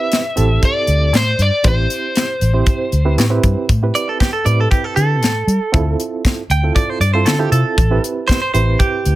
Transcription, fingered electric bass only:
0.38 0.57 A1 medium
0.88 1.13 D2 medium
1.13 1.33 A2 medium
1.39 1.49 G2 medium
1.65 1.85 A1 medium
2.42 2.62 A1 medium
2.93 3.18 D2 medium
3.18 3.38 A2 medium
3.44 3.54 G2 medium
3.70 3.89 A2 loud
4.46 4.66 A2 medium
4.97 5.22 D3 medium
5.22 5.42 A2 medium
5.47 5.58 G3 medium
5.74 5.94 D2 medium
6.50 6.70 D2 medium
7.00 7.26 G2 medium
7.26 7.47 D3 medium
7.52 7.62 C3 medium
7.78 7.98 A1 loud
8.54 8.74 A1 medium
9.06 9.15 D2 medium

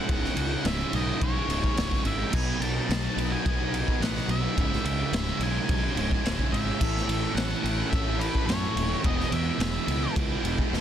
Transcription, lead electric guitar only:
0.00 0.67 F#5 loud
0.67 0.95 E5 medium
0.95 1.23 D#5 medium
1.22 2.02 C#5 medium
2.06 2.34 E5 medium
2.34 2.61 G#5 loud
2.62 3.32 A5 loud
3.32 4.04 G#5 medium
4.02 4.30 F#5 loud
4.31 4.84 E5 loud
4.86 5.43 E5 loud
5.43 6.57 G#5 medium
6.52 7.32 E5 loud
7.35 7.87 F#5 medium
7.90 8.20 E5 medium
8.19 8.46 B4 medium
8.46 8.99 C#5 medium
9.06 9.31 D#5 medium
9.33 10.12 E5 medium

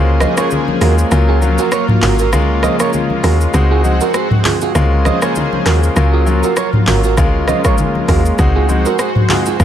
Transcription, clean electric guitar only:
0.21 0.34 C5 medium
0.21 0.33 D#5 medium
0.38 0.48 A#4 medium
0.38 0.48 C#5 medium
0.82 0.94 F#4 medium
0.82 0.94 A#4 medium
1.29 1.39 F4 medium
1.29 1.38 G#4 medium
1.59 1.69 F#4 medium
1.59 1.69 A#4 medium
1.72 1.85 A#4 medium
1.72 1.84 C#5 medium
2.03 2.15 F#4 medium
2.03 2.15 A#4 medium
2.19 2.30 F#4 medium
2.19 2.29 A#4 medium
2.64 2.76 C5 medium
2.64 2.75 D#5 medium
2.80 2.90 A#4 medium
2.80 2.90 C#5 medium
3.24 3.36 F#4 medium
3.24 3.36 A#4 medium
3.71 3.81 F4 medium
3.71 3.81 G#4 medium
4.01 4.12 F#4 medium
4.01 4.11 A#4 medium
4.15 4.28 G#4 medium
4.15 4.27 C5 medium
4.45 4.58 F4 medium
4.45 4.57 G#4 medium
4.62 4.72 F4 medium
4.62 4.72 G#4 medium
5.06 5.18 C5 medium
5.06 5.18 D#5 medium
5.23 5.33 A#4 medium
5.23 5.32 C#5 medium
5.66 5.79 F#4 medium
5.66 5.78 A#4 medium
6.13 6.24 F4 medium
6.13 6.23 G#4 medium
6.44 6.54 F#4 medium
6.44 6.53 A#4 medium
6.57 6.70 A#4 medium
6.57 6.69 C#5 medium
6.88 7.00 F#4 medium
6.88 7.00 A#4 medium
7.04 7.15 F#4 medium
7.04 7.14 A#4 medium
7.48 7.61 C5 medium
7.48 7.60 D#5 medium
7.65 7.75 A#4 medium
7.65 7.75 C#5 medium
8.09 8.21 F#4 medium
8.09 8.21 A#4 medium
8.56 8.66 F4 medium
8.56 8.66 G#4 medium
8.86 8.96 F#4 medium
8.86 8.96 A#4 medium
9.00 9.12 G#4 medium
9.00 9.12 C5 medium
9.30 9.43 F4 medium
9.30 9.42 G#4 medium
9.47 9.57 F4 medium
9.47 9.56 G#4 medium

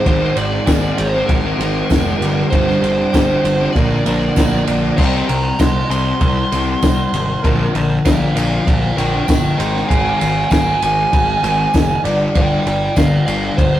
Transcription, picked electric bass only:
0.06 0.28 G#1 loud
0.36 0.59 G#1 medium
0.67 0.90 G#1 loud
0.99 1.21 G#1 medium
1.29 1.51 G#1 loud
1.58 1.81 G#1 medium
1.91 2.13 F1 medium
2.20 2.43 G1 loud
2.52 2.74 G1 loud
2.82 3.04 G1 medium
3.14 3.36 G1 loud
3.44 3.66 G1 medium
3.76 3.98 A#1 medium
4.06 4.28 A#1 loud
4.37 4.59 A#1 medium
4.67 4.89 A#1 medium
4.99 5.21 C2 loud
5.29 5.51 C2 loud
5.60 5.82 C2 loud
5.89 6.12 C2 medium
6.21 6.43 C2 loud
6.52 6.74 C2 loud
6.83 7.05 C2 medium
7.13 7.35 G#1 medium
7.44 7.66 A#1 loud
7.75 7.97 A#1 medium
8.06 8.28 A#1 loud
8.36 8.58 A#1 medium
8.67 8.89 A#1 medium
8.98 9.20 A#1 loud
9.29 9.51 G1 medium
9.60 9.81 G#1 loud
9.90 10.12 G#1 loud
10.21 10.43 G#1 medium
10.51 10.73 G#1 loud
10.82 11.04 G#1 medium
11.13 11.35 G#1 medium
11.43 11.65 G#1 loud
11.75 11.96 F#1 medium
12.04 12.26 G1 medium
12.36 12.58 G1 loud
12.66 12.88 G1 medium
12.97 13.19 G1 loud
13.27 13.49 G1 medium
13.58 13.80 G1 loud

